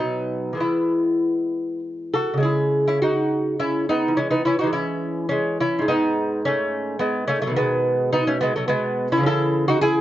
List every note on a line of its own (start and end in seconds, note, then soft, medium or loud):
0.00 0.53 B2 soft
0.00 0.54 F#3 soft
0.00 0.56 B3 soft
0.00 0.56 D#4 medium
0.53 2.33 E3 soft
0.53 2.36 G#3 soft
0.57 2.39 B3 soft
0.57 1.79 E4 medium
2.14 2.43 F#4 medium
2.14 2.42 A4 medium
2.34 4.08 C#3 soft
2.34 4.11 G#3 soft
2.40 2.87 C#4 soft
2.40 2.85 G#4 medium
2.45 2.85 E4 soft
2.88 3.02 C#4 medium
2.88 3.01 E4 medium
3.02 3.57 D#4 medium
3.02 3.58 F#4 medium
3.60 3.87 C#4 medium
3.60 3.88 E4 medium
3.89 4.16 B3 medium
3.89 4.17 D#4 medium
4.08 4.62 E3 soft
4.17 4.31 G#3 medium
4.17 4.31 C#4 medium
4.31 4.45 B3 medium
4.31 4.45 D#4 medium
4.45 4.59 C#4 medium
4.45 4.58 E4 medium
4.59 4.73 D#4 medium
4.59 4.72 F#4 medium
4.63 5.78 E3 soft
4.63 5.30 G#3 soft
4.73 5.26 C#4 medium
4.73 5.28 E4 medium
5.29 5.57 G#3 medium
5.29 5.57 C#4 medium
5.60 5.86 C#4 medium
5.60 5.87 E4 medium
5.79 7.47 G#2 medium
5.79 6.47 G#3 soft
5.88 6.40 B3 medium
5.88 6.42 D#4 medium
6.45 6.98 A3 medium
6.45 6.98 C#4 medium
6.99 7.26 G#3 medium
6.99 7.27 B3 medium
7.28 7.40 A3 medium
7.28 7.41 C#4 medium
7.42 7.56 F#3 medium
7.42 7.56 A3 medium
7.47 9.17 B2 medium
7.47 9.18 D#3 soft
7.56 8.10 G#3 medium
7.56 8.11 B3 medium
8.13 8.27 B3 medium
8.13 8.27 D#4 medium
8.27 8.41 A3 medium
8.27 8.40 C#4 medium
8.41 8.55 G#3 medium
8.41 8.55 B3 medium
8.56 8.69 F#3 medium
8.56 8.67 A3 medium
8.68 9.08 G#3 medium
8.68 9.09 B3 medium
9.12 9.22 C#4 medium
9.12 9.26 E4 medium
9.17 10.01 C#3 medium
9.17 10.01 E3 soft
9.23 9.69 C#4 medium
9.23 9.66 A4 loud
9.28 9.65 E4 medium
9.68 9.81 D#4 medium
9.68 9.81 F#4 loud
9.81 10.01 E4 medium
9.81 10.01 G#4 loud